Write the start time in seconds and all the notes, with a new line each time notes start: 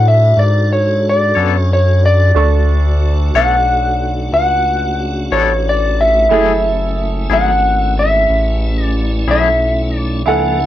Already playing: A2 D4 F#4 A4 C#6
0.08 E5
0.37 G#2 D5
0.73 C#5
1.10 D5
1.35 F#2 B3 D4 A4 C#5
1.55 C#5
1.73 C#5
2.06 D5
2.34 D2 A3 D4 F#4 A4 C#6
3.34 B1 B3 D4 A4 C#5 F#5
4.32 C#2 F#5
5.31 A1 B3 D4 A4 C#5
5.69 D5
6.01 E5
6.29 F#1 F#3 A3 C#4 E4 G#4 A4
6.34 G#4
7.29 G#1 F#3 A3 E4 G#4
7.33 F#5
7.99 E5
8.29 A1
8.85 D5
9.27 B1 F#3 A3 E4 G#4 E5
9.97 D5
10.26 C#2 F3 A#3 D4 E4 A4 F#5 G#5
10.60 C#4 E4 A4